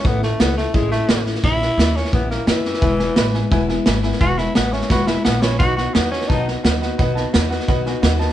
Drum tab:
HH |----p-------p---|----p-------p---|----p-------p---|----p-------p---|
SD |o-o-o-o-o-o-o-oo|o-o-o-ooo-o-o-oo|o-o-o-o-o-o-o-oo|o-o-o-ooo-o-o-o-|
BD |o-------o-------|o-------o-------|o-------o-------|o-------o-------|

HH |----p-------p---|----p-------p---|
SD |o-o-o-ooo-o-o-o-|o-o-o-ooo-o-o-oo|
BD |o-------o-------|o-------o-------|